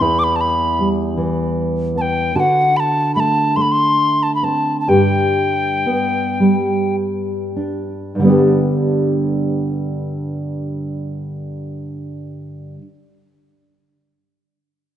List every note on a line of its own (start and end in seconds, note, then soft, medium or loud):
0.00 2.35 E2 soft
0.00 1.17 E3 soft
0.00 0.79 G3 soft
0.00 2.35 E4 soft
0.00 0.20 B5 medium
0.19 0.25 D6 soft
0.24 0.37 B5 medium
0.36 0.42 A5 soft
0.41 0.89 B5 medium
0.79 2.43 G3 soft
1.17 2.35 E3 soft
1.95 2.43 B3 soft
1.95 2.02 A5 medium
2.01 2.37 G5 medium
2.35 5.85 D3 medium
2.35 4.88 F#4 soft
2.35 2.41 A5 medium
2.40 2.78 F#5 medium
2.77 3.15 A5 medium
2.77 2.81 B5 medium
3.15 3.56 A3 soft
3.15 3.21 B5 medium
3.20 3.58 A5 medium
3.56 4.97 A3 soft
3.56 3.63 C6 medium
3.62 3.73 B5 medium
3.72 4.24 C6 medium
4.23 4.34 A5 medium
4.35 4.46 B5 soft
4.43 4.97 C4 soft
4.43 4.80 A5 medium
4.80 4.90 A5 soft
4.88 8.14 G2 soft
4.88 8.29 G4 soft
4.88 6.96 G5 medium
5.86 8.24 B3 soft
6.40 8.21 G3 soft
7.56 8.27 D4 soft
8.15 12.75 G2 soft
8.19 12.79 D3 soft
8.19 12.81 G3 soft
8.24 12.84 B3 soft
8.24 12.86 D4 soft
8.29 12.89 G4 soft